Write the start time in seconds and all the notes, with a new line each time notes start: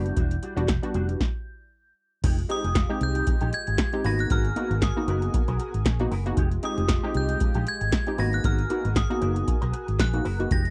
Already playing: F#1 G3 B3 D4 E4 F#4 D5 G6
0.05 muted clean electric guitar stroke, closed hi-hat
0.17 E1 G3 D4 F#4, kick, closed hi-hat
0.31 closed hi-hat
0.42 G3 D4 F#4, closed hi-hat
0.56 E1 G3 B3 D4 F#4, closed hi-hat
0.68 kick, snare, clap, closed hi-hat
0.83 G3 B3 D4 F#4, muted clean electric guitar stroke, closed hi-hat
0.94 F1 G3 D4 F#4, closed hi-hat
1.09 muted clean electric guitar stroke, closed hi-hat
1.20 kick, snare
2.24 F1 G#3 D#4 F4 G4 D#5, kick, closed hi-hat, crash
2.38 muted clean electric guitar stroke, closed hi-hat
2.49 G#3 C4 D#4 G4 D#6, closed hi-hat
2.64 F1 G#3 D#4 G#4, closed hi-hat
2.75 muted clean electric guitar stroke, kick, snare, clap, closed hi-hat
2.89 G#3 C4 D#4 G4
3.01 C2 G6, muted clean electric guitar stroke, closed hi-hat
3.15 muted clean electric guitar stroke, closed hi-hat
3.27 muted clean electric guitar stroke, kick, closed hi-hat
3.41 A#1 G#3 D#4 G4, closed hi-hat
3.53 G#6, muted clean electric guitar stroke, closed hi-hat
3.67 G#1, muted clean electric guitar stroke, closed hi-hat
3.78 muted clean electric guitar stroke, kick, snare, clap, closed hi-hat
3.93 G#3 C4 D#4 G4, muted clean electric guitar stroke, closed hi-hat
4.04 G#1 A#3 B3 D#4 F#4 G#4 A#4 B4 G#5 A#6, open hi-hat
4.19 F#6, muted clean electric guitar stroke, closed hi-hat
4.30 G#1 B3 F#4 A#4 F6, kick, closed hi-hat
4.45 closed hi-hat
4.56 A#3 B3 D#4 F#4 A#4, closed hi-hat
4.71 G#1 B3 F#4 A#4, closed hi-hat
4.82 D#6, kick, snare, clap, closed hi-hat
4.96 A#3 B3 D#4 F#4, muted clean electric guitar stroke
5.08 F#1 B3 F#4 A#4, closed hi-hat
5.22 muted clean electric guitar stroke, closed hi-hat
5.34 muted clean electric guitar stroke, kick, closed hi-hat
5.48 B1 B3 F#4 A#4, closed hi-hat
5.59 B3 F#4 A#4, closed hi-hat
5.74 G#1, muted clean electric guitar stroke, closed hi-hat
5.86 A#1, kick, snare, clap, closed hi-hat
5.99 A#3 B3 D#4 F#4, muted clean electric guitar stroke, closed hi-hat
6.11 F#1 B3 F#4 A#4, open hi-hat
6.26 A#3 B3 D#4 F#4, muted clean electric guitar stroke, closed hi-hat
6.37 F1 G#3 D#4 F4 G4 D#5, kick, closed hi-hat
6.51 muted clean electric guitar stroke, closed hi-hat
6.63 G#3 C4 D#4 G4 D#6, closed hi-hat
6.77 F1 G#3 D#4 G#4, closed hi-hat
6.88 muted clean electric guitar stroke, kick, snare, clap, closed hi-hat
7.03 G#3 C4 D#4 G4
7.14 C2 G6, muted clean electric guitar stroke, closed hi-hat
7.29 muted clean electric guitar stroke, closed hi-hat
7.40 muted clean electric guitar stroke, kick, closed hi-hat
7.54 A#1 G#3 D#4 G4, closed hi-hat
7.67 G#6, muted clean electric guitar stroke, closed hi-hat
7.81 G#1, muted clean electric guitar stroke, closed hi-hat
7.92 muted clean electric guitar stroke, kick, snare, clap, closed hi-hat
8.07 G#3 C4 D#4 G4, muted clean electric guitar stroke, closed hi-hat
8.18 G#1 A#3 B3 D#4 F#4 G#4 A#4 B4 G#5 A#6, open hi-hat
8.33 F#6, muted clean electric guitar stroke, closed hi-hat
8.44 G#1 B3 F#4 A#4 F6, kick, closed hi-hat
8.59 closed hi-hat
8.70 A#3 B3 D#4 F#4 A#4, closed hi-hat
8.84 G#1 B3 F#4 A#4, closed hi-hat
8.96 D#6, kick, snare, clap, closed hi-hat
9.10 A#3 B3 D#4 F#4, muted clean electric guitar stroke, closed hi-hat
9.21 F#1 B3 F#4 A#4, closed hi-hat
9.36 muted clean electric guitar stroke, closed hi-hat
9.47 muted clean electric guitar stroke, kick, closed hi-hat
9.61 B1 B3 F#4 A#4, closed hi-hat
9.73 B3 F#4 A#4, closed hi-hat
9.88 G#1, muted clean electric guitar stroke, closed hi-hat
9.99 A#1 F#6, kick, snare, clap, closed hi-hat
10.13 A#3 B3 D#4 F#4, muted clean electric guitar stroke, closed hi-hat
10.25 F#1 B3 F#4 A#4, open hi-hat
10.39 A#3 B3 D#4 F#4, muted clean electric guitar stroke, closed hi-hat
10.51 F1 G#3 D#4 F4 G4 D#5 A#6, kick, closed hi-hat
10.65 muted clean electric guitar stroke, closed hi-hat